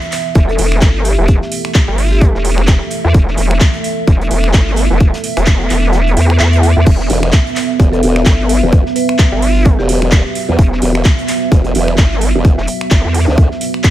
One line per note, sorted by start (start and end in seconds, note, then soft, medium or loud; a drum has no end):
0.00 13.90 B3 medium
0.00 6.83 E4 medium
0.00 6.85 A4 medium
0.00 13.90 E5 medium
0.00 closed hi-hat soft
0.12 clap medium
0.12 closed hi-hat medium
0.12 open hi-hat medium
0.35 0.57 E1 loud
0.35 kick loud
0.35 closed hi-hat medium
0.49 1.13 A4 medium
0.49 closed hi-hat soft
0.58 0.80 E1 loud
0.58 closed hi-hat medium
0.58 open hi-hat loud
0.72 finger snap medium
0.72 snare soft
0.81 1.16 G1 loud
0.81 kick loud
0.81 snare loud
0.81 clap loud
0.81 closed hi-hat medium
0.95 snare medium
1.05 1.14 G4 medium
1.05 closed hi-hat medium
1.05 open hi-hat loud
1.18 1.40 E1 loud
1.18 1.25 G4 medium
1.28 kick loud
1.28 closed hi-hat medium
1.42 snare medium
1.52 closed hi-hat medium
1.52 open hi-hat loud
1.65 finger snap medium
1.74 kick loud
1.74 snare loud
1.74 clap loud
1.74 closed hi-hat loud
1.88 2.33 G1 loud
1.98 open hi-hat medium
2.11 2.18 G4 medium
2.11 snare soft
2.21 kick loud
2.21 closed hi-hat medium
2.35 2.79 E1 loud
2.35 snare soft
2.45 closed hi-hat medium
2.45 open hi-hat loud
2.58 finger snap medium
2.67 kick loud
2.67 snare loud
2.67 clap loud
2.67 closed hi-hat medium
2.81 snare soft
2.91 closed hi-hat medium
2.91 open hi-hat medium
3.04 3.13 E2 loud
3.14 3.36 E1 loud
3.14 kick loud
3.14 closed hi-hat medium
3.28 snare soft
3.37 3.59 E1 loud
3.37 closed hi-hat medium
3.37 open hi-hat loud
3.51 finger snap medium
3.61 kick loud
3.61 snare loud
3.61 clap loud
3.61 closed hi-hat medium
3.73 closed hi-hat soft
3.84 closed hi-hat medium
3.84 open hi-hat medium
4.07 4.29 E1 loud
4.07 kick loud
4.07 closed hi-hat medium
4.21 closed hi-hat soft
4.31 4.52 E1 loud
4.31 closed hi-hat medium
4.31 open hi-hat loud
4.44 finger snap medium
4.44 snare soft
4.54 4.88 G1 medium
4.54 kick loud
4.54 snare loud
4.54 clap loud
4.54 closed hi-hat medium
4.67 snare medium
4.76 snare loud
4.76 closed hi-hat medium
4.76 open hi-hat medium
4.90 5.12 E1 loud
4.90 snare soft
5.00 kick loud
5.00 closed hi-hat medium
5.14 snare loud
5.14 closed hi-hat medium
5.23 snare soft
5.23 open hi-hat loud
5.37 5.69 E1 loud
5.37 finger snap medium
5.37 closed hi-hat medium
5.47 kick loud
5.47 snare loud
5.47 clap loud
5.47 closed hi-hat medium
5.60 snare soft
5.70 6.15 E1 loud
5.70 clap medium
5.70 closed hi-hat medium
5.70 open hi-hat medium
5.83 snare soft
5.93 snare loud
5.93 closed hi-hat medium
6.07 closed hi-hat soft
6.17 6.38 E2 loud
6.17 closed hi-hat medium
6.17 open hi-hat loud
6.30 finger snap medium
6.40 6.74 E2 loud
6.40 clap loud
6.53 closed hi-hat medium
6.63 closed hi-hat medium
6.63 open hi-hat medium
6.76 6.85 E2 loud
6.86 7.08 E1 loud
6.86 13.90 F#4 medium
6.86 13.90 B4 medium
6.86 kick loud
6.86 closed hi-hat medium
6.86 crash medium
7.00 snare soft
7.10 7.31 E1 loud
7.10 closed hi-hat medium
7.10 open hi-hat loud
7.23 finger snap medium
7.32 kick loud
7.32 snare loud
7.32 clap loud
7.32 closed hi-hat medium
7.47 closed hi-hat soft
7.56 clap medium
7.56 closed hi-hat medium
7.56 open hi-hat medium
7.80 8.01 E1 medium
7.80 kick loud
7.80 closed hi-hat loud
7.93 8.57 A4 medium
7.93 closed hi-hat soft
8.03 8.25 E1 loud
8.03 closed hi-hat medium
8.03 open hi-hat loud
8.16 finger snap medium
8.16 snare soft
8.26 8.60 G1 loud
8.26 kick loud
8.26 snare loud
8.26 clap loud
8.26 closed hi-hat medium
8.40 snare medium
8.49 closed hi-hat medium
8.49 open hi-hat loud
8.63 8.84 E1 medium
8.72 kick loud
8.72 closed hi-hat medium
8.86 snare medium
8.96 9.12 B4 loud
8.96 closed hi-hat medium
8.96 open hi-hat loud
9.09 finger snap medium
9.19 kick loud
9.19 snare loud
9.19 clap loud
9.19 closed hi-hat medium
9.32 9.77 G1 loud
9.42 open hi-hat medium
9.56 snare soft
9.65 kick loud
9.65 closed hi-hat medium
9.79 10.23 E1 loud
9.79 9.85 G4 medium
9.79 snare soft
9.89 9.97 G4 medium
9.89 closed hi-hat medium
9.89 open hi-hat loud
10.02 finger snap medium
10.12 kick loud
10.12 snare loud
10.12 clap loud
10.12 closed hi-hat medium
10.26 snare soft
10.35 closed hi-hat medium
10.35 open hi-hat loud
10.49 10.57 E2 loud
10.59 10.80 E1 loud
10.59 kick loud
10.59 closed hi-hat medium
10.72 snare soft
10.82 11.04 E1 loud
10.82 closed hi-hat medium
10.82 open hi-hat loud
10.95 finger snap medium
11.05 kick loud
11.05 snare loud
11.05 clap loud
11.05 closed hi-hat medium
11.19 closed hi-hat soft
11.28 clap medium
11.28 closed hi-hat medium
11.28 open hi-hat medium
11.52 11.73 E1 medium
11.52 kick loud
11.52 closed hi-hat medium
11.64 closed hi-hat soft
11.75 11.97 E1 loud
11.75 closed hi-hat medium
11.75 open hi-hat loud
11.88 finger snap medium
11.88 snare soft
11.98 12.33 G1 loud
11.98 kick loud
11.98 snare loud
11.98 clap loud
11.98 closed hi-hat medium
12.11 snare medium
12.21 closed hi-hat medium
12.21 open hi-hat loud
12.35 12.56 E1 medium
12.45 kick loud
12.45 closed hi-hat medium
12.58 12.66 E1 loud
12.58 snare medium
12.67 closed hi-hat medium
12.67 open hi-hat loud
12.81 finger snap medium
12.91 13.02 G1 medium
12.91 kick loud
12.91 snare loud
12.91 clap loud
12.91 closed hi-hat medium
13.04 13.26 E2 loud
13.14 open hi-hat medium
13.28 13.49 D2 medium
13.28 snare soft
13.38 kick loud
13.38 closed hi-hat medium
13.51 snare soft
13.61 closed hi-hat medium
13.61 open hi-hat loud
13.74 finger snap medium
13.84 kick loud
13.84 snare loud
13.84 clap loud
13.84 closed hi-hat medium